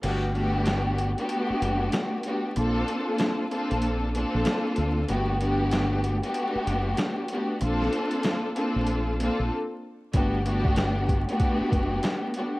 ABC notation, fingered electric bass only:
X:1
M:4/4
L:1/16
Q:"Swing 16ths" 1/4=95
K:G
V:1 name="Fingered electric bass" clef=bass
G,,,6- G,,, z3 F,,,2 z4 | _B,,,2 z4 z B,,,4 B,,, z2 D,,2 | G,,,6- G,,, z3 F,,,2 z4 | _B,,,2 z4 z B,,,4 B,,, z4 |
G,,,6- G,,, z3 F,,,2 z4 |]